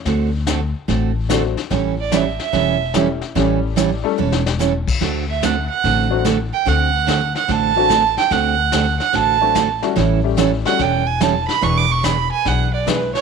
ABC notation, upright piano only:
X:1
M:4/4
L:1/8
Q:"Swing" 1/4=145
K:Amix
V:1 name="Upright piano"
z6 [F,A,=CDF] z | z6 [G,A,CEG] z | [G,A,CEG]3 [G,A,CEA] z4 | z4 z [F,A,=CDF] z2 |
z4 z [F,A,=CDF] z2 | z4 z [F,A,=CDF] z [G,A,^CEF] | z [G,A,CEG]2 [G,A,CEF] z4 | z6 [^G,B,DE^G] z |]